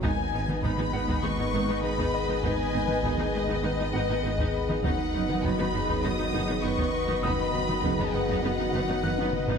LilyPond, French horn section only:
\new Staff \with { instrumentName = "French horn section" } { \time 4/4 \key gis \minor \tempo 4 = 100 r2 b'4 gis'4 | b'8 b'8 gis'4 b'8 b'8 gis'4 | dis'4 fis'8 gis'8 fis'8 gis'8 b'4 | b'8 fis'8 gis'4 fis'4 b'8 b'8 | }